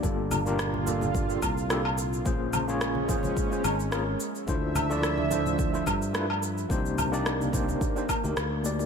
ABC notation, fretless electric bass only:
X:1
M:4/4
L:1/16
Q:"Swing 16ths" 1/4=108
K:Gm
V:1 name="Fretless electric bass" clef=bass
G,,,8- G,,,2 C,,6 | B,,,8 z2 _A,,,4 z2 | D,,8- D,,2 G,,6 | C,,8 z3 D,, D,,4 |]